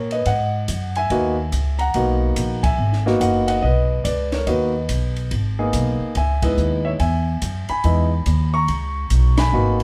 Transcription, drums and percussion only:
0.11 ride
0.26 kick, ride
0.68 kick, hi-hat pedal, ride
0.95 ride
1.10 kick, ride
1.52 kick, hi-hat pedal, ride
1.79 ride
1.94 kick, ride
2.36 kick, hi-hat pedal, ride
2.64 kick, ride
2.93 snare
3.07 snare
3.21 kick, hi-hat pedal, ride
3.48 ride
3.63 kick
4.05 kick, hi-hat pedal, ride
4.32 snare, ride
4.47 kick, ride
4.89 kick, hi-hat pedal, ride
5.16 ride
5.31 kick, ride
5.73 kick, hi-hat pedal, ride
6.15 kick, ride
6.42 kick, ride
6.57 hi-hat pedal
7.00 kick, ride
7.42 kick, hi-hat pedal, ride
7.69 ride
7.84 kick, ride
8.26 kick, hi-hat pedal, ride
8.68 kick, ride
9.10 kick, hi-hat pedal, ride
9.38 snare, ride
9.80 ride

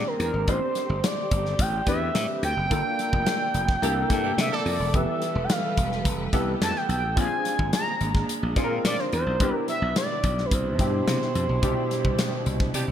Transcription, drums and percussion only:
0.20 closed hi-hat
0.48 kick, closed hi-hat
0.75 snare, closed hi-hat
1.04 snare, closed hi-hat
1.31 kick, closed hi-hat
1.46 snare
1.59 kick, closed hi-hat
1.87 kick, snare, closed hi-hat
2.15 snare, closed hi-hat
2.43 closed hi-hat
2.71 kick, closed hi-hat
2.99 snare, closed hi-hat
3.13 kick
3.26 snare, closed hi-hat
3.54 closed hi-hat
3.69 kick, snare
3.83 closed hi-hat
4.10 kick, snare, closed hi-hat
4.38 snare, closed hi-hat
4.53 snare
4.66 open hi-hat
4.94 kick, closed hi-hat
5.22 snare, closed hi-hat
5.50 snare, closed hi-hat
5.77 kick, closed hi-hat
5.92 snare
6.05 kick, closed hi-hat
6.33 kick, snare, closed hi-hat
6.62 snare, closed hi-hat
6.76 snare
6.90 closed hi-hat
7.17 kick, closed hi-hat
7.45 snare, closed hi-hat
7.59 kick
7.73 snare, closed hi-hat
8.01 closed hi-hat
8.15 kick, snare
8.29 closed hi-hat
8.56 kick, snare, closed hi-hat
8.85 snare, closed hi-hat
8.99 snare
9.13 closed hi-hat
9.40 kick, closed hi-hat
9.68 snare, closed hi-hat
9.96 snare, closed hi-hat
10.24 kick, closed hi-hat
10.38 snare
10.51 kick, closed hi-hat
10.79 kick, snare, closed hi-hat
11.08 snare, closed hi-hat
11.22 snare
11.35 closed hi-hat
11.63 kick, closed hi-hat
11.91 snare, closed hi-hat
12.05 kick
12.19 snare, closed hi-hat
12.46 closed hi-hat
12.60 kick, snare
12.74 closed hi-hat

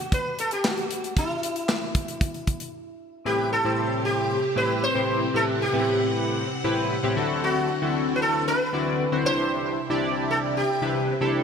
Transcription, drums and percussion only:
0.12 kick, closed hi-hat
0.39 closed hi-hat
0.51 closed hi-hat
0.64 snare, clap
0.78 closed hi-hat
0.91 closed hi-hat
1.04 closed hi-hat
1.17 kick, closed hi-hat
1.43 closed hi-hat
1.56 closed hi-hat
1.69 snare, clap
1.95 kick, closed hi-hat
2.08 closed hi-hat
2.21 kick, closed hi-hat
2.34 closed hi-hat
2.47 kick, closed hi-hat
2.60 closed hi-hat

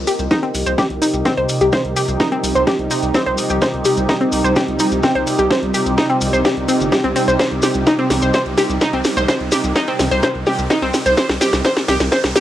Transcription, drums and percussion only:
0.07 open hi-hat, maracas
0.19 closed hi-hat, maracas
0.31 kick, snare, closed hi-hat, maracas
0.43 closed hi-hat
0.55 open hi-hat, maracas
0.66 closed hi-hat, maracas
0.78 kick, snare, closed hi-hat, maracas
0.90 closed hi-hat
1.02 open hi-hat, maracas
1.14 closed hi-hat, maracas
1.25 kick, snare, closed hi-hat, maracas
1.37 closed hi-hat
1.49 open hi-hat, maracas
1.61 closed hi-hat, maracas
1.72 kick, snare, closed hi-hat, maracas
1.85 closed hi-hat
1.96 open hi-hat, maracas
2.08 closed hi-hat, maracas
2.20 kick, snare, closed hi-hat, maracas
2.32 closed hi-hat
2.44 open hi-hat, maracas
2.56 closed hi-hat, maracas
2.67 kick, snare, closed hi-hat, maracas
2.79 closed hi-hat
2.91 open hi-hat, maracas
3.03 closed hi-hat, maracas
3.14 kick, snare, closed hi-hat, maracas
3.26 closed hi-hat
3.38 open hi-hat, maracas
3.50 closed hi-hat, maracas
3.62 kick, snare, closed hi-hat, maracas
3.74 closed hi-hat
3.85 open hi-hat, maracas
3.97 closed hi-hat, maracas
4.09 kick, snare, closed hi-hat, maracas
4.21 closed hi-hat
4.32 open hi-hat, maracas
4.45 closed hi-hat, maracas
4.56 kick, snare, closed hi-hat, maracas
4.68 closed hi-hat
4.79 open hi-hat, maracas
4.92 closed hi-hat, maracas
5.03 kick, snare, closed hi-hat, maracas
5.15 closed hi-hat
5.27 open hi-hat, maracas
5.39 closed hi-hat, maracas
5.51 kick, snare, closed hi-hat, maracas
5.63 closed hi-hat
5.74 open hi-hat, maracas
5.86 closed hi-hat, maracas
5.98 kick, snare, closed hi-hat, maracas
6.10 closed hi-hat
6.21 open hi-hat, maracas
6.33 closed hi-hat, maracas
6.45 kick, snare, closed hi-hat, maracas
6.57 closed hi-hat
6.69 open hi-hat, maracas
6.81 closed hi-hat, maracas
6.92 kick, snare, closed hi-hat, maracas
7.04 closed hi-hat
7.16 open hi-hat, maracas
7.28 closed hi-hat, maracas
7.39 kick, snare, closed hi-hat, maracas
7.51 closed hi-hat
7.62 snare, open hi-hat, maracas
7.74 closed hi-hat, maracas
7.87 kick, snare, closed hi-hat, maracas
7.99 closed hi-hat
8.10 snare, mid tom, open hi-hat, maracas
8.22 closed hi-hat, maracas
8.34 kick, snare, closed hi-hat, maracas
8.46 closed hi-hat
8.58 snare, open hi-hat, maracas
8.70 closed hi-hat, maracas
8.81 kick, snare, closed hi-hat, maracas
8.93 closed hi-hat
9.04 snare, open hi-hat, maracas
9.17 closed hi-hat, mid tom, maracas
9.28 kick, snare, closed hi-hat, maracas
9.41 closed hi-hat
9.52 snare, open hi-hat, maracas
9.64 closed hi-hat, maracas
9.76 kick, snare, closed hi-hat, maracas
9.88 closed hi-hat
9.99 snare, mid tom, open hi-hat, maracas
10.11 closed hi-hat, maracas
10.23 kick, snare, closed hi-hat, maracas
10.35 closed hi-hat
10.46 snare, mid tom, open hi-hat, maracas
10.58 closed hi-hat, maracas
10.70 kick, snare, closed hi-hat, maracas
10.82 closed hi-hat
10.94 snare, open hi-hat, maracas
11.06 closed hi-hat, maracas
11.17 kick, snare, closed hi-hat, maracas
11.30 snare, closed hi-hat
11.41 snare, open hi-hat, maracas
11.53 snare, closed hi-hat, maracas
11.65 kick, snare, closed hi-hat, maracas
11.77 snare, closed hi-hat
11.88 snare, mid tom, open hi-hat, maracas
12.00 snare, closed hi-hat, maracas
12.12 kick, snare, closed hi-hat, maracas
12.24 snare, closed hi-hat
12.36 snare, open hi-hat, maracas

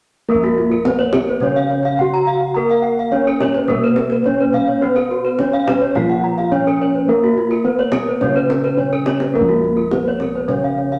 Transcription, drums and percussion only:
0.43 kendang slap
0.85 kendang high, kendang low
1.13 kendang high, kendang low
1.27 kendang slap
1.40 kendang low
1.83 kendang slap
1.98 kendang low
2.69 kendang slap
3.40 kendang high, kendang low
3.54 kendang slap
3.68 kendang low
3.96 kendang high
4.10 kendang slap
4.24 kendang low
4.53 kendang low
4.96 kendang slap
5.39 kendang high, kendang low
5.67 kendang high, kendang low
5.82 kendang slap
5.95 kendang low
6.39 kendang slap
6.53 kendang low
7.51 kendang slap
7.79 kendang slap
7.92 kendang high, kendang low
8.07 kendang slap
8.21 kendang low
8.50 kendang high
8.64 kendang slap
8.79 kendang low
8.92 kendang low
9.06 kendang high
9.20 kendang high
9.49 kendang slap
9.91 kendang high, kendang low
10.20 kendang high, kendang low
10.35 kendang slap
10.48 kendang low
10.92 kendang slap

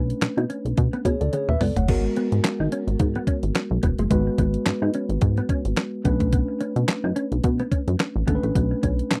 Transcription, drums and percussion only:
0.10 closed hi-hat
0.22 snare, clap, closed hi-hat
0.38 closed hi-hat
0.50 closed hi-hat
0.66 closed hi-hat
0.77 kick, closed hi-hat
0.93 closed hi-hat
1.05 kick, closed hi-hat
1.21 closed hi-hat
1.33 closed hi-hat, high tom
1.49 mid tom
1.61 mid tom, open hi-hat
1.76 closed hi-hat, floor tom
1.88 kick, crash
2.16 closed hi-hat
2.32 closed hi-hat
2.44 snare, clap, closed hi-hat
2.72 closed hi-hat
2.88 closed hi-hat
2.99 kick, closed hi-hat
3.15 closed hi-hat
3.27 kick, closed hi-hat
3.43 closed hi-hat
3.55 snare, clap, closed hi-hat
3.83 kick, closed hi-hat
3.99 closed hi-hat
4.11 kick, closed hi-hat
4.38 kick, closed hi-hat
4.54 closed hi-hat
4.66 snare, clap, closed hi-hat
4.94 closed hi-hat
5.10 closed hi-hat
5.21 kick, closed hi-hat
5.37 closed hi-hat
5.49 kick, closed hi-hat
5.65 closed hi-hat
5.76 snare, clap, closed hi-hat
6.05 kick, closed hi-hat
6.20 kick, closed hi-hat
6.33 kick, closed hi-hat
6.61 closed hi-hat
6.76 closed hi-hat
6.89 snare, clap, closed hi-hat
7.16 closed hi-hat
7.32 closed hi-hat
7.44 kick, closed hi-hat
7.59 closed hi-hat
7.72 kick, closed hi-hat
7.88 closed hi-hat
7.99 snare, clap, closed hi-hat
8.28 kick, closed hi-hat
8.43 closed hi-hat
8.55 kick, closed hi-hat
8.83 kick, closed hi-hat
8.99 closed hi-hat
9.11 snare, clap, closed hi-hat

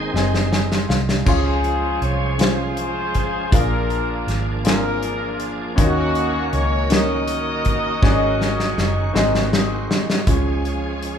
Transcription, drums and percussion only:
0.16 snare
0.34 snare
0.53 snare
0.72 snare
0.90 snare
1.09 snare
1.26 kick, crash
1.64 closed hi-hat
2.02 closed hi-hat
2.39 snare, closed hi-hat
2.77 closed hi-hat
3.15 kick, closed hi-hat
3.52 kick, closed hi-hat
3.90 closed hi-hat
4.28 snare, closed hi-hat
4.65 snare, closed hi-hat
5.03 closed hi-hat
5.40 closed hi-hat
5.78 kick, closed hi-hat
6.15 closed hi-hat
6.53 closed hi-hat
6.90 snare, closed hi-hat
7.28 closed hi-hat
7.65 kick, closed hi-hat
8.03 kick, snare
8.41 snare
8.60 snare
8.78 snare
9.16 snare
9.35 snare
9.53 snare
9.91 snare
10.10 snare
10.27 kick, closed hi-hat
10.65 closed hi-hat
11.03 closed hi-hat

